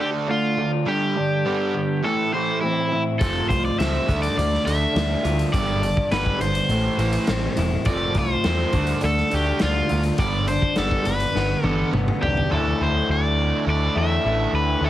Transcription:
Already playing: D3 D4
0.00 D3 A3 D4 G4
0.28 D3 A3 D4 F4
0.57 D3 A3 F4
0.85 G2 D3 G3 G4
1.16 G2 D3 D4
1.45 G2 D3 G3 B3
1.74 G2 D3 G3
2.03 A2 E3 A3 A4
2.33 A2 E3 A3 C5
2.61 A2 E3 C4 E4
2.92 A2 E3 E4
3.19 F1 F3 A3 C4 A4, kick, closed hi-hat
3.49 C2 F3 A3 F4 C5, kick, closed hi-hat
3.65 D5
3.79 C#2 F3 A3 C4 E5, snare, closed hi-hat
4.08 D2 D3 A3 D4, kick, closed hi-hat
4.22 D5, closed hi-hat
4.36 D2 D3 A3 D4 D5, closed hi-hat
4.53 snare
4.65 D2 D3 A3 D4 E5, closed hi-hat
4.93 D2 D3 A3 D4, snare, closed hi-hat
5.23 D2 D3 A3 F4, closed hi-hat
5.39 closed hi-hat
5.53 G1 G2 D3 G3 D5, kick, closed hi-hat
5.82 G2 D3 D4, closed hi-hat
5.97 kick
6.11 G1 G2 D3 G3 B3 B4, snare, closed hi-hat
6.26 kick
6.39 G1 G2 D3 G3 C5, closed hi-hat
6.55 closed hi-hat
6.68 A1 A2 E3 A3, closed hi-hat
6.97 A1 A2 E3 A3, closed hi-hat
7.13 closed hi-hat
7.27 A1 A2 E3 C4, snare, closed hi-hat
7.56 E1 A2 E3 E4, closed hi-hat
7.85 F1 F3 A3 C4 D5, kick, closed hi-hat
8.15 C2 F3 A3 F4 C5, kick, closed hi-hat
8.43 E2 F3 A3 C4, snare, closed hi-hat
8.72 D2 D3 A3 D4, kick, closed hi-hat
8.87 closed hi-hat
9.01 D2 D3 A3 D4, closed hi-hat
9.05 A4
9.17 snare
9.30 D2 D3 A3 D4 G4, closed hi-hat
9.59 D2 D3 A3 D4 F4, snare, closed hi-hat
9.89 D2 D3 A3 F4, closed hi-hat
10.03 closed hi-hat
10.18 G1 G2 D3 G3 D5, kick, closed hi-hat
10.47 G2 D3 D4 C5, closed hi-hat
10.62 kick
10.76 G1 G2 D3 G3 B3 A4, snare, closed hi-hat
10.91 kick
11.05 G1 G2 D3 G3 B4, closed hi-hat
11.20 closed hi-hat
11.35 G1 G2 D3 B3, snare
11.63 G1 G2 D3 G3 A4, high tom
11.92 G1 G2 D3 B3, mid tom
12.08 mid tom
12.21 C2 G2 D3 D4 G4, floor tom
12.37 floor tom
12.50 D2 D3 E3 A3 D4 E4 A4
12.54 E4
12.80 D2 C5
13.09 D2 D5
13.66 D2 D3 A3 D4 E4
13.70 D5
13.95 E2 D3 E3 A3 E4 E5
14.23 A1 D3 E3 A3 E4
14.53 D2 B4
14.81 D2 D3 E3 A3 D4 E4
14.85 A4

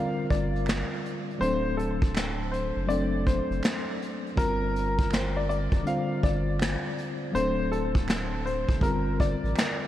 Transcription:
Already playing: D3 G3 C4 F4 A#4 F5
0.30 G1 D5, kick, closed hi-hat
0.56 closed hi-hat
0.66 finger snap, snare, closed hi-hat
0.70 finger snap
1.06 closed hi-hat
1.31 closed hi-hat
1.39 D1 F#3 A3 C4 D4 C5, closed hi-hat
1.44 A4
1.77 A4, closed hi-hat
2.02 kick, closed hi-hat
2.15 finger snap, snare, closed hi-hat
2.17 finger snap
2.52 C5, closed hi-hat
2.76 F#1
2.87 F#3 A3 C4 D4 D5, closed hi-hat
2.91 A4
3.27 C5, kick, closed hi-hat
3.50 F#1, closed hi-hat
3.63 finger snap, snare, closed hi-hat
3.66 finger snap
4.02 closed hi-hat
4.27 closed hi-hat
4.36 G1 D3 G3 C4 F4 A#4, kick, closed hi-hat
4.41 A#4
4.76 closed hi-hat
4.99 kick, closed hi-hat
5.11 C5, finger snap, snare, closed hi-hat
5.14 finger snap
5.37 D5
5.49 D5, closed hi-hat
5.72 F1, kick, closed hi-hat
5.83 D3 G3 C4 F4 F5, closed hi-hat
5.89 C5
6.23 G1 D5, kick, closed hi-hat
6.60 finger snap, snare, closed hi-hat
6.63 finger snap
6.98 closed hi-hat
7.32 D1 F#3 A3 C4 D4 C5, closed hi-hat
7.37 A4
7.72 A4, closed hi-hat
7.95 kick, closed hi-hat
8.08 finger snap, snare, closed hi-hat
8.11 finger snap
8.46 C5, closed hi-hat
8.69 F#1, kick
8.79 G1 D3 G3 C4 F4 A#4, kick, closed hi-hat
8.84 G#4
8.91 A#4
9.20 D5, kick, closed hi-hat
9.43 A1, closed hi-hat
9.56 finger snap, snare, closed hi-hat
9.59 finger snap

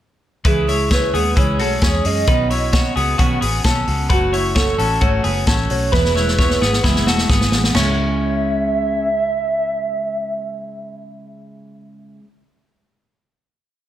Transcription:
0.45 C#2 C#3 E3 G#3 C#4 E4 G#4 B4, kick, closed hi-hat
0.67 G#3 C#4 E4 G#4 C#5, open hi-hat
0.90 E3 G#3 C#4 E4 G#4 B4 C#5, kick, snare, closed hi-hat
1.13 D#2 G#3 B3 C#4 G#4, open hi-hat
1.36 C#2 C#3 E3 G#3 C#4 E4 G#4 C#5, kick, closed hi-hat
1.59 B1 G#3 A3 C#4 F#4 G#4, open hi-hat
1.81 E2 E3 G#3 C#4 G#4, kick, snare, closed hi-hat
2.05 F#2 G#3 C#4 G#4 D#5, open hi-hat
2.27 B1 B2 D#3 B3 C#4 D#4 F#4 B4, kick, closed hi-hat
2.50 B3 C#4 E4 F#4 C#5, open hi-hat
2.73 D#3 B3 C#4 F#4 C#5, kick, snare, closed hi-hat
2.96 C#2 B3 C#4 F#4 G#4, open hi-hat
3.18 B1 B2 D#3 B3 C#4 F#4, kick, closed hi-hat
3.41 A1 B3 C#4 F#4 G#4, open hi-hat
3.64 B1 D#3 B3 C#4 F#4 A4, kick, snare, closed hi-hat
3.87 C#2 B3 C#4 F#4, open hi-hat
4.10 F#1 F#3 A3 C#4 F#4 B4, kick, closed hi-hat
4.32 A3 C#4 E4 F#4 C#5, open hi-hat
4.55 F#3 A3 C#4 F#4 A4 C#5, kick, snare, closed hi-hat
4.78 A1 A3 C#4 F#4 A4, open hi-hat
5.01 G#1 F#3 A3 C#4 F#4 C#5, kick, closed hi-hat
5.24 F#1 A3 B3 C#4 F#4 G#4, open hi-hat
5.46 A1 F#3 A3 C#4 F#4 A4, kick, snare, closed hi-hat
5.69 B1 A3 C#4 F#4 C#5, open hi-hat
5.92 E1 E3 G#3 B3 E4 B4, kick, snare
6.05 snare
6.15 G#3 B3 E4 C#5, snare
6.28 snare
6.38 E3 G#3 B3 E4 C#5, kick, snare
6.50 snare
6.61 G#1 G#3 B3 E4 G#4, snare
6.73 snare
6.84 F#1 E3 G#3 B3 E4, kick, snare
6.96 snare
7.06 E1 G#3 A3 B3 E4 F#4, snare
7.18 snare
7.29 G#1 E3 G#3 B3 E4 G#4, kick, snare
7.41 snare
7.51 A1 G#3 B3 E4, snare
7.64 snare
7.72 C#2 C#3 C#4, snare, floor tom, china
7.76 G#3 E5
7.80 C#4 E4

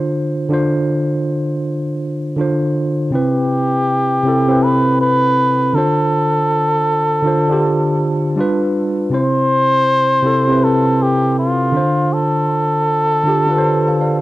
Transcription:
Already playing: D3 D4 F4 C5
0.49 D3 D4 F4
0.53 C5
2.36 D3 D4 F4
2.41 C5
3.11 C3 C4 E4
3.15 G4 B4
4.23 C3 C4 E4
4.28 A4
4.47 C3 C4 E4
4.52 B4
4.63 B4
5.01 B4
5.73 D3 D4 F4 A4
5.78 C5
7.22 D3 D4 F4
7.27 C5
7.48 D3 D4 F4
7.52 G4
8.36 G3 D4 F4
8.41 B4
9.10 C3 C4 E4
9.14 C5
10.22 C3 C4 E4
10.27 A4
10.47 C3 C4 E4
10.52 B4
10.64 A4
11.02 G4
11.39 F4
11.72 D3 D4 F4
11.77 C5
12.13 A4
13.24 D3 D4 F4
13.29 G4
13.47 D3 D4 F4
13.51 B4
13.58 C5
13.87 F5 A5
14.01 D5 F5

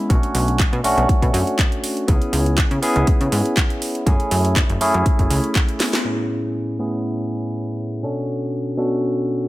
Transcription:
0.09 B1 A3 C#4 D4 F#4, kick, closed hi-hat
0.23 closed hi-hat
0.35 B1, open hi-hat
0.48 closed hi-hat
0.60 kick, clap, closed hi-hat
0.73 B2, closed hi-hat
0.83 B1 A3 C#4 D4 F#4, open hi-hat
0.97 B1, closed hi-hat
1.09 kick, closed hi-hat
1.22 B2, kick, closed hi-hat
1.34 F#2, open hi-hat
1.47 closed hi-hat
1.59 kick, clap, closed hi-hat
1.72 closed hi-hat
1.84 open hi-hat
1.97 closed hi-hat
2.07 C#2 B3 C#4 E4 G#4, kick, closed hi-hat
2.22 closed hi-hat
2.33 C#2, open hi-hat
2.46 closed hi-hat
2.58 kick, clap, closed hi-hat
2.71 C#3, closed hi-hat
2.82 B3 C#4 E4 G#4, open hi-hat
2.96 C#2, closed hi-hat
3.07 kick, closed hi-hat
3.21 C#3, closed hi-hat
3.32 G#2, open hi-hat
3.46 closed hi-hat
3.57 kick, clap, closed hi-hat
3.70 closed hi-hat
3.82 open hi-hat
3.95 closed hi-hat
4.06 F#2 A3 C#4 E4 G#4, kick, closed hi-hat
4.20 closed hi-hat
4.31 F#2, open hi-hat
4.45 closed hi-hat
4.56 kick, clap, closed hi-hat
4.70 F#1, closed hi-hat
4.80 F#2 A3 C#4 E4 G#4, open hi-hat
4.94 F#2, closed hi-hat
5.06 kick, closed hi-hat
5.19 F#1, kick, closed hi-hat
5.30 C#2, open hi-hat
5.44 closed hi-hat
5.55 kick, clap, closed hi-hat
5.69 closed hi-hat
5.80 snare, open hi-hat
5.93 snare, closed hi-hat
6.04 A2 B3 C#4 E4 G#4
6.79 A2 B3 C#4 E4 G#4
8.02 B2 C#4 D4 F#4 A4
8.77 B2 C#4 D4 F#4 A4

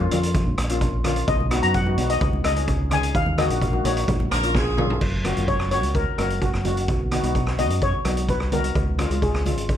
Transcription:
0.00 F4, high conga
0.11 F2 A#3 C#4 F4, closed hi-hat, low conga
0.23 closed hi-hat
0.34 kick, closed hi-hat, high conga
0.46 A#1
0.58 A#1, cross-stick, closed hi-hat
0.69 A#3 C#4 F4, closed hi-hat
0.81 kick, closed hi-hat
1.04 A#3 C#4 F4, cross-stick, closed hi-hat, low conga
1.16 closed hi-hat
1.27 B1 D#5, kick, closed hi-hat
1.40 high conga
1.50 B3 D#4 F#4, cross-stick, closed hi-hat
1.63 F#2 B3 D#4 F#4 A#5, closed hi-hat
1.74 F#5, kick, closed hi-hat
1.86 B3 D#4 F#4, high conga
1.98 B1 B3 D#4 F#4, closed hi-hat, low conga
2.10 D#5, closed hi-hat
2.21 C#2, kick, closed hi-hat, high conga
2.33 C#2, high conga
2.44 C#2 D#5, cross-stick, closed hi-hat
2.55 C#4 D#4 G#4, closed hi-hat
2.68 kick, closed hi-hat
2.90 C#4 D#4 G#4 G#5, cross-stick, closed hi-hat, low conga
3.03 closed hi-hat
3.15 D#2 F5, kick, closed hi-hat
3.26 high conga
3.37 A#3 D#4 F#4 D#5, cross-stick, closed hi-hat, low conga
3.49 A#1 A#3 D#4 F#4, closed hi-hat
3.62 kick, closed hi-hat
3.72 A#3 D#4 F#4, high conga
3.84 A#1 A#3 D#4 F#4 C#5, closed hi-hat, low conga
3.97 closed hi-hat
4.08 A#1, kick, closed hi-hat, high conga
4.20 A#1, high conga
4.31 A#1 A#4, cross-stick, closed hi-hat
4.43 A#3 C#4 F4, closed hi-hat
4.55 G#4, kick, snare
4.77 A#3 C#4 F4, mid tom, low conga
4.90 floor tom
5.01 F#1, kick, crash
5.24 A#3 C#4 F#4, cross-stick, closed hi-hat, low conga
5.36 F#1 A#3 C#4 F4, closed hi-hat, high conga
5.48 C#5, kick, closed hi-hat
5.60 cross-stick
5.71 A#3 C#4 F#4 C#5, closed hi-hat, high conga
5.83 C#2, closed hi-hat
5.95 A#4, kick, closed hi-hat
6.18 F#1 A#3 C#4 F#4 A#4, cross-stick, closed hi-hat, high conga
6.30 closed hi-hat
6.42 F#4, kick, closed hi-hat
6.53 F#1, cross-stick
6.65 A#3 C#4 F#4, closed hi-hat, high conga, low conga
6.77 closed hi-hat
6.88 B1, kick, closed hi-hat
7.11 B3 D#4 F#4, cross-stick, closed hi-hat, low conga
7.23 B1 B3 D#4 F#4, closed hi-hat, high conga
7.35 kick, closed hi-hat
7.47 cross-stick
7.58 B3 D#4 F#4 D#5, closed hi-hat, high conga, low conga
7.70 F#2, closed hi-hat
7.81 C#5, kick, closed hi-hat
8.05 B1 B3 D#4 F#4, cross-stick, closed hi-hat, high conga
8.17 closed hi-hat
8.28 B4, kick, closed hi-hat
8.40 C2, cross-stick
8.52 B3 D#4 F#4 A#4, closed hi-hat, high conga, low conga
8.64 closed hi-hat
8.75 C#2, kick, closed hi-hat
8.98 G#3 C#4 F4, cross-stick, closed hi-hat, low conga
9.10 C#2 G#3 C#4 F4, closed hi-hat, high conga
9.22 G#4, kick, closed hi-hat
9.34 cross-stick
9.46 G#3 C#4 F4, closed hi-hat, high conga, low conga
9.57 G#1, closed hi-hat
9.69 kick, closed hi-hat

